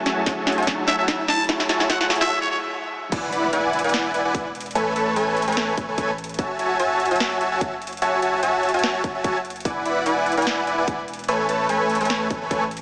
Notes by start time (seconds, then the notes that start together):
Already playing: F#3 A3 E4 G#4, riser
0.06 F#4 C#5 E5 G#5 A5, snare, closed hi-hat
0.16 F#3 A3 E4 G#4
0.26 F#4, kick, snare, closed hi-hat
0.45 F#3 A3 E4 G#4, snare, closed hi-hat
0.52 closed hi-hat
0.58 F#4 C#5 E5 G#5 A5, closed hi-hat
0.63 closed hi-hat
0.67 kick, snare, closed hi-hat
0.88 F#4 C#5 E5 G#5 A5, snare, closed hi-hat
0.99 F#4 C#5 E5 G#5 A5
1.08 kick, snare, closed hi-hat
1.28 A5, snare, closed hi-hat
1.34 closed hi-hat
1.40 closed hi-hat
1.44 F#3, closed hi-hat
1.48 A3 E4 F#4 G#4 C#5 E5 G#5 A5, kick, snare, closed hi-hat
1.60 snare
1.69 F#4 C#5 E5 G#5 A5, snare, closed hi-hat
1.79 F#3 A3 E4 G#4, snare
1.90 F#4 C#5 F#5 G#5 A5, kick, snare, closed hi-hat
2.01 F#5, snare
2.08 F#3 A3 E4 G#4, snare, closed hi-hat
2.16 closed hi-hat
2.21 F#4 C#5 E5 G#5 A5, snare, closed hi-hat
2.26 closed hi-hat
2.42 C#5
2.51 C#5
3.12 E1 E4 B4 D5 F#5 G#5, kick, closed hi-hat, crash, impact
3.32 E4 B4 D5 F#5 B5, closed hi-hat
3.53 E4 B4 D5 F#5 G#5, closed hi-hat
3.73 closed hi-hat
3.79 closed hi-hat
3.84 E4 B4 D5 F#5 G#5, closed hi-hat
3.89 closed hi-hat
3.94 snare, closed hi-hat
4.14 E4 B4 D5 F#5 G#5, closed hi-hat
4.25 E4 B4 D5 F#5 G#5
4.35 kick, closed hi-hat
4.55 closed hi-hat
4.61 closed hi-hat
4.66 closed hi-hat
4.71 closed hi-hat
4.75 A1 A3 A4 B4 C#5 G#5, closed hi-hat
4.96 A3 A4 B4 C#5 A5, closed hi-hat
5.16 A3 A4 B4 C#5 G#5, closed hi-hat
5.37 closed hi-hat
5.42 closed hi-hat
5.48 A3 A4 B4 C#5 G#5, closed hi-hat
5.52 closed hi-hat
5.57 snare
5.77 A3, kick, closed hi-hat
5.88 A3 A4 B4 C#5 G#5
5.98 kick, closed hi-hat
6.18 closed hi-hat
6.24 closed hi-hat
6.29 closed hi-hat
6.34 closed hi-hat
6.39 F#1 F#4 C#5 E5 G#5 A5, kick, closed hi-hat
6.59 F#4 C#5 E5 G#5 A5, closed hi-hat
6.80 F#4 C#5 E5 G#5 A5, closed hi-hat
7.00 closed hi-hat
7.06 closed hi-hat
7.11 F#4 C#5 E5 G#5 A5, closed hi-hat
7.16 closed hi-hat
7.20 snare, closed hi-hat
7.41 F#4 C#5 E5 G#5 A5, closed hi-hat
7.52 F#4 C#5 E5 G#5 A5
7.61 kick, closed hi-hat
7.82 closed hi-hat
7.87 closed hi-hat
7.93 closed hi-hat
7.97 closed hi-hat
8.02 F#4 C#5 E5 G#5 A5, closed hi-hat
8.22 F#4 C#5 E5 G#5 A5, closed hi-hat
8.43 F#4 C#5 E5 G#5 A5, closed hi-hat
8.63 closed hi-hat
8.69 closed hi-hat
8.74 F#4 C#5 E5 G#5 A5, closed hi-hat
8.79 closed hi-hat
8.84 snare, closed hi-hat
9.04 F#4 C#5, kick, closed hi-hat
9.15 F#4 C#5 E5 G#5 A5
9.24 kick, closed hi-hat
9.45 closed hi-hat
9.50 closed hi-hat
9.56 closed hi-hat
9.60 closed hi-hat
9.65 E1 E4 B4 D5 F#5 G#5, kick, closed hi-hat
9.86 E4 B4 D5 F#5 B5, closed hi-hat
10.06 E4 B4 D5 F#5 G#5, closed hi-hat
10.26 closed hi-hat
10.32 closed hi-hat
10.37 E4 B4 D5 F#5 G#5, closed hi-hat
10.42 closed hi-hat
10.47 snare
10.67 E4 B4 D5 F#5 G#5, closed hi-hat
10.78 E4 B4 D5 F#5 G#5
10.88 kick, closed hi-hat
11.08 closed hi-hat
11.14 closed hi-hat
11.19 closed hi-hat
11.24 closed hi-hat
11.28 A1 A3 A4 B4 C#5 G#5, closed hi-hat
11.49 A3 A4 B4 C#5 A5, closed hi-hat
11.69 A3 A4 B4 C#5 G#5, closed hi-hat
11.90 closed hi-hat
11.95 closed hi-hat
12.01 A3 A4 B4 C#5 G#5, closed hi-hat
12.05 closed hi-hat
12.10 snare, closed hi-hat
12.30 A3 A4 C#5 G#5, kick, closed hi-hat
12.42 A3 A4 B4 C#5 G#5
12.51 kick, closed hi-hat
12.71 closed hi-hat
12.77 closed hi-hat